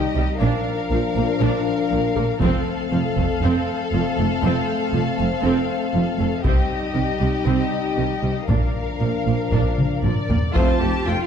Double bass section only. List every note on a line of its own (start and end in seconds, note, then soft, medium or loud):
0.15 0.23 C2 soft
0.40 0.48 A#1 medium
0.91 0.98 A#1 soft
1.15 1.23 A#1 soft
1.41 1.49 A#1 medium
1.91 1.99 A#1 soft
2.17 2.25 A#1 soft
2.42 2.50 F1 medium
2.92 3.00 F1 soft
3.17 3.25 F1 soft
3.41 3.49 F1 medium
3.93 4.01 F1 soft
4.18 4.26 F1 soft
4.43 4.51 F1 medium
4.93 5.01 F1 soft
5.19 5.27 F1 soft
5.44 5.52 F1 medium
5.95 6.03 F1 soft
6.19 6.27 F1 soft
6.45 6.53 C2 medium
6.96 7.04 C2 soft
7.21 7.29 C2 soft
7.46 7.54 C2 soft
7.97 8.05 C2 soft
8.23 8.31 C2 soft
8.48 8.56 A#1 soft
9.00 9.08 A#1 soft
9.26 9.34 A#1 soft
9.51 9.59 A#1 soft
10.03 10.11 A#1 soft
10.29 10.37 A#1 soft
10.55 10.63 F2 medium
10.80 10.88 F2 soft
11.06 11.14 F2 soft